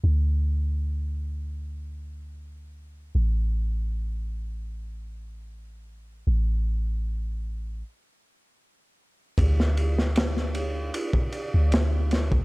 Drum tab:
RD |----------------|----------------|----------------|x-x-x-x-x-x-x-x-|
SD |----------------|----------------|----------------|-o-ooo------o-o-|
BD |----------------|----------------|----------------|o--------o-----o|